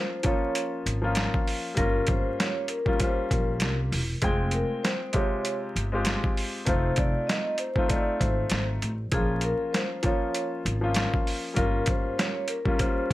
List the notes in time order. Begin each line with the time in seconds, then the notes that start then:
Already playing: F3 A#3 C#4 F4 C5
0.23 F3 A#3 C#4 F4 C#5, kick, closed hi-hat
0.55 closed hi-hat
0.86 G#1, closed hi-hat
1.02 F3 A#3 C#4 F4
1.15 snare, closed hi-hat
1.34 kick
1.48 open hi-hat
1.75 G1 G3 A#3 C#4 F4 A#4, kick, closed hi-hat
2.07 G1 C5, kick, closed hi-hat
2.39 C#5, snare, closed hi-hat
2.68 A#4, closed hi-hat
2.86 G3 A#3 C#4 F4, kick
2.99 G3 A#3 C#4 F4 C5, kick, closed hi-hat
3.30 A#1 A#4, kick, closed hi-hat
3.60 C2, snare, closed hi-hat
3.92 E1, open hi-hat
4.22 F1 G#3 C4 F4 G#4 G5, kick, closed hi-hat
4.51 A#4, closed hi-hat
4.83 C5, snare, closed hi-hat
5.13 C3 G#3 F4 G4 C#5, kick, closed hi-hat
5.45 closed hi-hat
5.76 G1, closed hi-hat
5.92 G#3 C4 F4 G4
6.05 snare, closed hi-hat
6.24 kick
6.37 open hi-hat
6.65 F1 A3 C4 D#4 F4 C5, kick, closed hi-hat
6.96 F1 D5, kick, closed hi-hat
7.27 D#5, snare, closed hi-hat
7.58 C5, closed hi-hat
7.75 A3 C4 D#4 F4, kick
7.88 A3 C4 D#4 F4 D5, kick, closed hi-hat
8.20 G#1 C5, kick, closed hi-hat
8.50 G#1, snare, closed hi-hat
8.82 A1, closed hi-hat
9.12 A#1 F3 A#3 C#4 F4 G#4, kick, closed hi-hat
9.41 A#4, closed hi-hat
9.73 C5, snare, closed hi-hat
10.03 F3 A#3 C#4 F4 C#5, kick, closed hi-hat
10.35 closed hi-hat
10.65 G#1, closed hi-hat
10.81 F3 A#3 C#4 F4
10.94 snare, closed hi-hat
11.14 kick
11.27 open hi-hat
11.54 G1 G3 A#3 C#4 F4 A#4, kick, closed hi-hat
11.86 G1 C5, kick, closed hi-hat
12.18 C#5, snare, closed hi-hat
12.48 A#4, closed hi-hat
12.65 G3 A#3 C#4 F4, kick
12.78 G3 A#3 C#4 F4 C5, kick, closed hi-hat